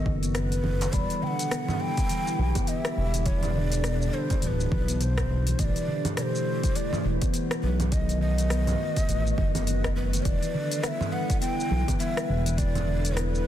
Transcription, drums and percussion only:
0.06 kick medium
0.23 open hi-hat soft
0.23 shaker medium
0.35 cross-stick medium
0.35 open hi-hat medium
0.35 shaker medium
0.52 open hi-hat soft
0.52 shaker soft
0.64 low conga medium
0.81 open hi-hat soft
0.81 darbuka ka medium
0.81 darbuka tek medium
0.81 shaker medium
0.93 kick loud
0.93 open hi-hat medium
0.93 shaker medium
1.10 open hi-hat soft
1.10 shaker soft
1.39 open hi-hat soft
1.39 shaker medium
1.51 cross-stick medium
1.51 open hi-hat medium
1.51 shaker medium
1.69 low conga medium
1.69 shaker soft
1.97 kick loud
1.97 open hi-hat soft
1.97 shaker medium
2.09 open hi-hat medium
2.09 shaker soft
2.27 shaker soft
2.55 kick loud
2.55 open hi-hat soft
2.55 low conga medium
2.55 shaker medium
2.67 open hi-hat medium
2.67 shaker medium
2.85 cross-stick medium
2.85 open hi-hat soft
2.85 shaker soft
3.14 open hi-hat soft
3.14 shaker medium
3.26 kick loud
3.26 open hi-hat medium
3.26 shaker medium
3.43 open hi-hat soft
3.43 low conga medium
3.43 shaker soft
3.72 open hi-hat soft
3.72 shaker medium
3.84 cross-stick medium
3.84 open hi-hat medium
3.84 shaker medium
4.02 shaker soft
4.30 kick loud
4.30 open hi-hat soft
4.30 low conga medium
4.30 shaker medium
4.42 open hi-hat medium
4.42 shaker medium
4.60 shaker soft
4.72 kick loud
4.88 open hi-hat soft
4.88 shaker medium
5.01 open hi-hat medium
5.01 shaker medium
5.18 kick medium
5.18 cross-stick medium
5.18 open hi-hat soft
5.18 low conga medium
5.18 shaker soft
5.47 open hi-hat soft
5.47 shaker medium
5.59 kick loud
5.59 open hi-hat medium
5.59 shaker medium
5.76 open hi-hat soft
5.76 shaker soft
6.05 open hi-hat soft
6.05 low conga medium
6.05 shaker medium
6.17 cross-stick medium
6.17 open hi-hat medium
6.17 shaker medium
6.35 shaker soft
6.63 kick loud
6.63 open hi-hat soft
6.63 shaker medium
6.76 open hi-hat medium
6.76 shaker medium
6.93 low conga medium
6.93 shaker soft
7.22 kick loud
7.22 open hi-hat soft
7.22 shaker medium
7.34 open hi-hat medium
7.34 shaker medium
7.51 cross-stick medium
7.51 open hi-hat soft
7.51 shaker soft
7.80 open hi-hat soft
7.80 low conga medium
7.80 shaker medium
7.92 kick loud
7.92 open hi-hat medium
7.92 shaker medium
8.09 open hi-hat soft
8.09 shaker soft
8.38 open hi-hat soft
8.38 shaker medium
8.50 cross-stick medium
8.50 open hi-hat soft
8.50 shaker medium
8.67 open hi-hat soft
8.67 low conga medium
8.67 shaker soft
8.96 kick loud
8.96 open hi-hat soft
8.96 shaker medium
9.09 open hi-hat medium
9.09 shaker medium
9.27 shaker soft
9.38 kick loud
9.55 open hi-hat soft
9.55 low conga medium
9.55 shaker medium
9.67 open hi-hat medium
9.67 shaker medium
9.84 kick medium
9.84 cross-stick medium
9.84 open hi-hat soft
9.84 shaker soft
10.13 open hi-hat soft
10.13 shaker medium
10.25 kick loud
10.25 open hi-hat medium
10.25 shaker medium
10.43 open hi-hat soft
10.43 shaker soft
10.72 open hi-hat soft
10.72 shaker medium
10.83 cross-stick medium
10.83 open hi-hat medium
10.83 shaker medium
11.01 low conga medium
11.01 shaker soft
11.30 kick loud
11.30 open hi-hat soft
11.30 shaker medium
11.42 open hi-hat medium
11.42 shaker medium
11.60 shaker soft
11.88 kick loud
11.88 open hi-hat soft
11.88 low conga medium
11.88 shaker medium
12.00 open hi-hat medium
12.00 shaker medium
12.17 cross-stick medium
12.17 open hi-hat soft
12.17 shaker soft
12.46 open hi-hat soft
12.46 shaker medium
12.58 kick loud
12.58 open hi-hat medium
12.58 shaker medium
12.75 open hi-hat soft
12.75 low conga medium
12.75 shaker soft
13.05 open hi-hat soft
13.05 shaker medium
13.17 cross-stick medium
13.17 open hi-hat medium
13.17 shaker medium
13.35 shaker soft

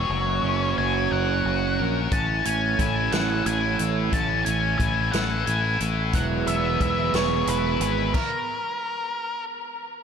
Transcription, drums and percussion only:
2.12 kick loud
2.12 closed hi-hat medium
2.45 closed hi-hat medium
2.79 kick medium
2.79 closed hi-hat medium
3.12 snare medium
3.12 closed hi-hat medium
3.46 closed hi-hat medium
3.79 closed hi-hat medium
4.13 kick loud
4.13 closed hi-hat medium
4.46 closed hi-hat medium
4.80 kick medium
4.80 closed hi-hat medium
5.13 snare medium
5.13 closed hi-hat medium
5.47 closed hi-hat medium
5.80 closed hi-hat medium
6.13 kick medium
6.13 closed hi-hat medium
6.47 closed hi-hat medium
6.80 kick medium
6.80 closed hi-hat medium
7.14 snare medium
7.14 closed hi-hat medium
7.47 closed hi-hat medium
7.81 closed hi-hat medium
8.14 kick loud
8.14 crash medium

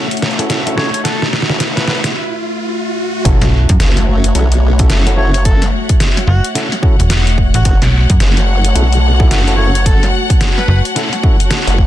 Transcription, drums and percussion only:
0.11 closed hi-hat soft
0.17 closed hi-hat soft
0.22 snare medium
0.22 closed hi-hat soft
0.31 closed hi-hat soft
0.39 closed hi-hat medium
0.50 snare medium
0.50 closed hi-hat medium
0.67 closed hi-hat soft
0.78 snare medium
0.94 closed hi-hat medium
1.05 snare medium
1.05 closed hi-hat medium
1.22 snare medium
1.33 snare medium
1.42 snare medium
1.50 snare medium
1.60 snare medium
1.60 closed hi-hat medium
1.77 snare medium
1.77 closed hi-hat soft
1.88 snare loud
2.04 snare medium
2.04 closed hi-hat medium
3.25 kick loud
3.25 closed hi-hat medium
3.42 snare soft
3.42 snare medium
3.42 closed hi-hat soft
3.69 kick loud
3.69 closed hi-hat medium
3.80 snare loud
3.80 closed hi-hat medium
3.97 snare medium
3.97 closed hi-hat soft
4.24 closed hi-hat medium
4.35 closed hi-hat medium
4.52 closed hi-hat soft
4.79 kick loud
4.79 closed hi-hat medium
4.90 snare loud
4.90 closed hi-hat medium
5.07 closed hi-hat soft
5.34 closed hi-hat medium
5.45 kick loud
5.45 closed hi-hat medium
5.62 snare medium
5.62 closed hi-hat soft
5.89 kick loud
5.89 closed hi-hat medium
6.00 snare loud
6.00 closed hi-hat medium
6.17 snare medium
6.17 closed hi-hat soft
6.44 closed hi-hat medium
6.55 snare soft
6.55 closed hi-hat medium
6.72 snare soft
6.72 closed hi-hat soft
6.83 kick loud
7.00 closed hi-hat medium
7.10 snare loud
7.10 closed hi-hat medium
7.27 closed hi-hat soft
7.38 kick medium
7.54 closed hi-hat medium
7.65 kick loud
7.65 closed hi-hat medium
7.82 snare soft
7.82 snare medium
7.82 closed hi-hat soft
8.10 kick loud
8.10 closed hi-hat medium
8.20 snare loud
8.20 closed hi-hat medium
8.37 snare soft
8.37 closed hi-hat soft
8.65 closed hi-hat medium
8.76 closed hi-hat medium
8.93 closed hi-hat soft
9.20 kick loud
9.31 snare loud
9.31 closed hi-hat medium
9.48 closed hi-hat soft
9.75 closed hi-hat medium
9.86 kick loud
9.86 closed hi-hat medium
10.03 snare soft
10.03 closed hi-hat soft
10.30 kick loud
10.30 closed hi-hat medium
10.41 snare loud
10.41 closed hi-hat medium
10.58 snare medium
10.85 closed hi-hat soft
10.96 snare soft
10.96 closed hi-hat medium
11.13 snare soft
11.13 closed hi-hat soft
11.23 kick loud
11.40 closed hi-hat soft
11.51 snare loud
11.51 closed hi-hat medium
11.68 closed hi-hat soft
11.78 kick medium

